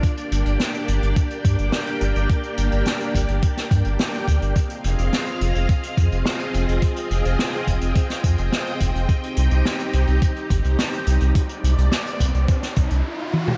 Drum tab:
HH |xxxxxxxxxxxxxxxx|xxxxxxxxxxxxxxxx|xxxxxxxxxxxxxxxx|xxxxxxxxxxxxxxxx|
SD |----o-------o---|----o----o--o---|----o-------o---|----o----o--o---|
T1 |----------------|----------------|----------------|----------------|
T2 |----------------|----------------|----------------|----------------|
BD |o-------o-o-----|o-----o-o-o---o-|o-------o-o-----|o-----o-o-o---o-|

HH |xxxxxxxxxxxxxxxx|xxxxxxxxxxxx----|
SD |----o-------o---|----o----o------|
T1 |----------------|--------------o-|
T2 |----------------|---------------o|
BD |o-------o-o-----|o-----o-o-o-----|